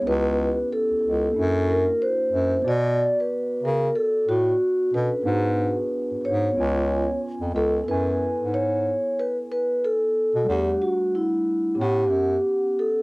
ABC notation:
X:1
M:4/4
L:1/16
Q:"Swing 16ths" 1/4=92
K:F#m
V:1 name="Vibraphone"
B4 A6 ^A2 ^B4 | d3 B3 ^A2 =A2 F4 B2- | B6 c6 z2 A2 | B4 c4 B2 B2 A4 |
=G2 F2 E4 G6 A2 |]
V:2 name="Tine electric piano"
[B,CE=G]8 [^A,DEF]8 | [B,Fd]12- [B,Fd]2 [CDFA]2 | [B,DFG]8 [B,C^Eg]8 | [B,EAg]16 |
[=G,A,Df]8 [B,C=Gf]8 |]
V:3 name="Bass clarinet" clef=bass
C,,4 z C,, C,,2 F,,4 z2 F,,2 | B,,3 z3 C,2 z2 A,,2 z2 B,, z | G,,4 z G,, G,,2 C,,4 z ^E,, C,,2 | F,,3 G,,4 z8 B,, |
E,,2 z6 A,,2 F,,2 z4 |]